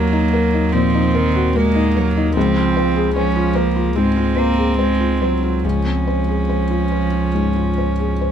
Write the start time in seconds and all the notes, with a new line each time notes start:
Already playing: D#2 F#3 A#3 D#4 F#4 A#4
0.13 D#4
0.34 A#4
0.54 D#4
0.72 A#2 F3 C4
0.94 D#4
1.15 D#3 A#4
1.35 F#4
1.56 G#3 A#3 A#4
1.76 D#4
1.97 F#3 A#4
2.17 D#4
2.36 C#2 F3 C4
2.57 F4
2.77 C5
2.96 G#4
3.16 F3 C#4 C5
3.36 F4
3.55 A#3 C5
3.76 F4
3.96 G#2 G#3 C4
4.16 F4
4.36 A#3 C5
4.58 G#4
4.79 G#3 C5
5.00 F4
5.22 F#3 C5
5.43 F4
5.64 C#2 F3 C#4
5.86 C4
6.07 C5
6.29 G#4
6.49 C5
6.71 F4
6.92 C5
7.13 F4
7.34 G#2
7.56 F4
7.78 C5
7.99 G#4
8.21 C5